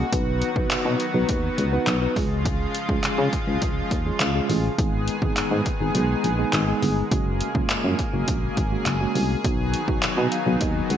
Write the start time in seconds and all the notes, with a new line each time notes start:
Already playing: C#3 G#3 A#3 F#4
0.12 B1 D#3 F#3 B3 D#4 F#4 B4, kick, closed hi-hat
0.42 closed hi-hat
0.56 B1 B3 D#4 F#4 B4, kick
0.71 B2, clap, closed hi-hat
0.85 B2
1.00 closed hi-hat
1.14 B1 B3 D#4 F#4 B4
1.29 D#2, kick, closed hi-hat
1.58 C#2, closed hi-hat
1.73 B3 D#4 F#4 B4
1.87 B1, clap, closed hi-hat
2.02 B3 D#4 F#4 B4
2.16 C#2 C#3 F3 G#3 C#4 F4 G#4, kick, open hi-hat
2.45 kick, closed hi-hat
2.75 closed hi-hat
2.89 C#2 G#3 C#4 F4 G#4, kick
3.04 C#3, clap, closed hi-hat
3.18 C#3
3.33 kick, closed hi-hat
3.47 C#2 G#3 C#4 F4 G#4
3.62 C#2, kick, closed hi-hat
3.91 D#2, kick, closed hi-hat
4.05 G#3 C#4 F4 G#4
4.20 C#2, clap, closed hi-hat
4.35 G#3 C#4 F4 G#4
4.49 A1, open hi-hat
4.78 G#1 D#3 G#3 B3 D#4 G#4, kick, closed hi-hat
5.08 closed hi-hat
5.22 G#1 G#3 B3 D#4 G#4, kick
5.37 G#2, clap, closed hi-hat
5.51 G#2
5.66 kick, closed hi-hat
5.80 G#1 G#3 B3 D#4 G#4
5.95 B1, closed hi-hat
6.24 A#1, closed hi-hat
6.38 G#3 B3 D#4 G#4
6.53 G#1, clap, closed hi-hat
6.68 G#3 B3 D#4 G#4
6.82 G1, open hi-hat
7.11 F#1 C#3 G#3 A#3 C#4 F#4 G#4, kick, closed hi-hat
7.41 closed hi-hat
7.55 F#1 G#3 A#3 C#4 F4, kick
7.70 F#2, clap, closed hi-hat
7.84 F#2
7.99 kick, closed hi-hat
8.13 F#1 G#3 A#3 C#4 F#4
8.28 A#1, kick, closed hi-hat
8.57 G#1, kick, closed hi-hat
8.71 G#3 A#3 C#4 F#4
8.86 F#1, clap, closed hi-hat
9.01 G#3 A#3 C#4 F#4
9.15 C2, open hi-hat
9.44 B1 D#3 F#3 B3 D#4 F#4, kick, closed hi-hat
9.74 closed hi-hat
9.88 B1 F#3 B3 D#4 F#4, kick
10.03 B2, clap, closed hi-hat
10.17 B2
10.32 F5, closed hi-hat
10.46 B1 F#3 B3 D#4 F#4
10.61 D#2 D#5, kick, closed hi-hat
10.90 C#2 F#5, closed hi-hat